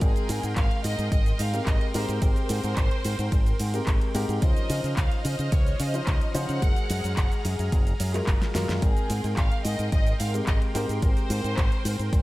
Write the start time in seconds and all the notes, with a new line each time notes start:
0.01 G#1 G#3 C4 G#4 A#4 G5 C6, kick, closed hi-hat, ride, shaker
0.16 closed hi-hat, shaker
0.29 G#2, open hi-hat, ride, shaker
0.43 G#2, closed hi-hat, shaker
0.56 G#1 F5, kick, clap, closed hi-hat, ride, shaker
0.71 closed hi-hat
0.84 G#2 D#5, open hi-hat, ride, shaker
0.99 G#2, closed hi-hat, shaker
1.12 G#1 D#5, kick, closed hi-hat, ride, shaker
1.26 closed hi-hat, shaker
1.39 G#2 F5, open hi-hat, ride, shaker
1.53 G#3 C4 G4 A#4, closed hi-hat, shaker
1.66 G#1 D#5, kick, clap, closed hi-hat, ride, shaker
1.81 closed hi-hat
1.94 G#2 G#3 C4 G4 A#4 C5, open hi-hat, ride, shaker
2.09 G#2, closed hi-hat, shaker
2.21 G#1 G#3 C4 G4 A#4 C5, kick, closed hi-hat, ride, shaker
2.36 closed hi-hat, shaker
2.49 G#2, open hi-hat, ride, shaker
2.64 G#2, closed hi-hat, shaker
2.76 G#1, kick, clap, closed hi-hat, ride, shaker
2.91 closed hi-hat
3.05 G#2, open hi-hat, ride, shaker
3.19 G#2, closed hi-hat, shaker
3.32 G#1, kick, closed hi-hat, ride, shaker
3.46 closed hi-hat, shaker
3.60 G#2, open hi-hat, ride, shaker
3.74 G#3 C4 G4 A#4, closed hi-hat, shaker
3.87 G#1, kick, clap, closed hi-hat, ride, shaker
4.01 closed hi-hat
4.14 G#2 G#3 C4 G4 A#4, open hi-hat, ride, shaker
4.29 G#2, closed hi-hat, shaker
4.41 C#2 F3 C#4 D#4 C5 D#5 F6, kick, closed hi-hat, ride, shaker
4.56 closed hi-hat, shaker
4.70 C#3, open hi-hat, ride, shaker
4.84 C#3, closed hi-hat, shaker
4.97 C#2 F5, kick, clap, closed hi-hat, ride, shaker
5.11 closed hi-hat
5.25 C#3 D#5, open hi-hat, ride, shaker
5.39 C#3, closed hi-hat, shaker
5.52 C#2 C#5, kick, closed hi-hat, ride, shaker
5.67 closed hi-hat, shaker
5.80 C#3 D#5, open hi-hat, ride, shaker
5.93 F3 C#4 D#4 C5, closed hi-hat, shaker
6.07 C#2, kick, clap, closed hi-hat, ride, shaker
6.21 closed hi-hat
6.34 C#3 F3 C#4 D#4 C5 F#5, open hi-hat, ride, shaker
6.49 C#3, closed hi-hat, shaker
6.61 F#1 G#3 G#4 A#5, kick, closed hi-hat, ride, shaker
6.76 closed hi-hat, shaker
6.90 F#2, open hi-hat, ride, shaker
7.04 F#2, closed hi-hat, shaker
7.17 F#1, kick, clap, closed hi-hat, ride, shaker
7.32 closed hi-hat, shaker
7.45 F#2, open hi-hat, ride, shaker
7.59 F#2, closed hi-hat, shaker
7.72 F#1, kick, closed hi-hat, ride, shaker
7.87 closed hi-hat, shaker
8.00 F#2, open hi-hat, ride, shaker
8.14 G#3 F4 F#4 A#4, clap, closed hi-hat, shaker
8.27 F#1, kick, clap, closed hi-hat, ride, shaker
8.42 snare, closed hi-hat, shaker
8.54 F#2 G#3 F4 F#4 A#4, snare, open hi-hat, ride, shaker
8.69 F#2, snare, closed hi-hat, shaker
8.81 G#1 G#3 C4 G#4 A#4 G5 C6, kick, closed hi-hat, ride, shaker
8.97 closed hi-hat, shaker
9.10 G#2, open hi-hat, ride, shaker
9.24 G#2, closed hi-hat, shaker
9.37 G#1 F5, kick, clap, closed hi-hat, ride, shaker
9.52 closed hi-hat
9.65 G#2 D#5, open hi-hat, ride, shaker
9.79 G#2, closed hi-hat, shaker
9.92 G#1 D#5, kick, closed hi-hat, ride, shaker
10.07 closed hi-hat, shaker
10.20 G#2 F5, open hi-hat, ride, shaker
10.34 G#3 C4 G4 A#4, closed hi-hat, shaker
10.47 G#1 D#5, kick, clap, closed hi-hat, ride, shaker
10.62 closed hi-hat
10.74 G#2 G#3 C4 G4 A#4 C5, open hi-hat, ride, shaker
10.89 G#2, closed hi-hat, shaker
11.02 G#1 G#3 C4 G4 A#4 C5, kick, closed hi-hat, ride, shaker
11.17 closed hi-hat, shaker
11.30 G#2, open hi-hat, ride, shaker
11.44 G#2, closed hi-hat, shaker
11.57 G#1, kick, clap, closed hi-hat, ride, shaker
11.72 closed hi-hat
11.85 G#2, open hi-hat, ride, shaker
11.99 G#2, closed hi-hat, shaker
12.13 G#1, kick, closed hi-hat, ride, shaker